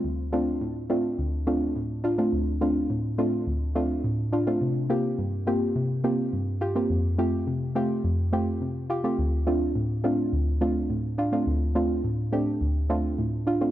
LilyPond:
\new Staff \with { instrumentName = "Synth pluck" } { \time 4/4 \key d \minor \tempo 4 = 105 << { r8 <a c' d' f'>16 r8. <a c' d' f'>16 r8. <a c' d' f'>16 r8. <d' f'>16 <a c' d' f'>16 | r8 <a c' d' f'>16 r8. <a c' d' f'>16 r8. <a c' d' f'>16 r8. <d' f'>16 <a c' d' f'>16 | r8 <bes c' f' g'>16 r8. <bes c' f' g'>16 r8. <bes c' f' g'>16 r8. <f' g'>16 <bes c' f' g'>16 | r8 <a c' f' g'>16 r8. <a c' f' g'>16 r8. <a c' f' g'>16 r8. <f' g'>16 <a c' f' g'>16 |
r8 <a c' d' f'>16 r8. <a c' d' f'>16 r8. <a c' d' f'>16 r8. <d' f'>16 <a c' d' f'>16 | r8 <a c' d' f'>16 r8. <a c' d' g'>16 r8. <a c' d' f'>16 r8. <d' f'>16 <a c' d' f'>16 | } \\ { d,4 a,4 d,4 a,4 | d,4 a,4 d,4 a,4 | c4 g,4 c4 g,4 | f,4 c4 f,4 c4 |
d,4 a,4 d,4 a,4 | d,4 a,4 d,4 a,4 | } >> }